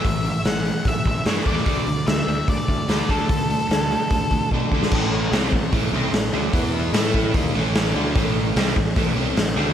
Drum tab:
CC |----------------|----------------|----------------|x---------------|
HH |o-o-o-o-o-o-o-o-|o-o-o-o-o-o-o-o-|o-o-o-o-o-o-----|----o---o---o---|
SD |----o-------o--o|----o-------o---|----o----------o|----o-------o---|
BD |o-------o-o---o-|o-------o-o---o-|o-------o-o-o-o-|o-----o-o-------|

CC |----------------|----------------|
HH |o---o---o---o---|o---o---o---o---|
SD |----o-------o---|----o-------o---|
BD |o-----o-o-------|o-----o-o-------|